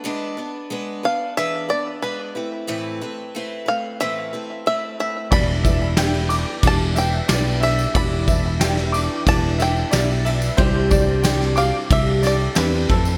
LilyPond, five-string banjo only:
\new Staff \with { instrumentName = "Five-string banjo" } { \time 4/4 \key e \phrygian \tempo 4 = 91 r4. f''8 e''8 d''8 b'8. r16 | r4. f''8 e''4 e''8 e''8 | b''2 a''8 g''4 e''8 | b''2 a''8 g''4 r8 |
r4. f''8 e''8 d''8 b'8. r16 | }